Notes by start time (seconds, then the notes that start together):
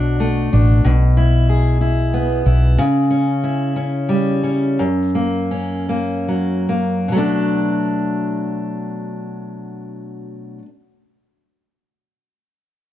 Already playing: B1 B2 F#3 D4 F#4
0.20 A3
0.53 A1 D4
0.85 B1 B2
1.17 E4
1.49 G#4
1.81 E4
2.14 B3
2.46 B1 E4
2.78 C#3
3.10 C#4
3.44 E4
3.76 C#4
4.09 G3
4.43 C#4
4.79 F#2
5.15 A#3
5.51 C#4
5.89 A#3
6.28 F#3
6.69 A#3
7.08 B2 F#3
7.15 A3 D4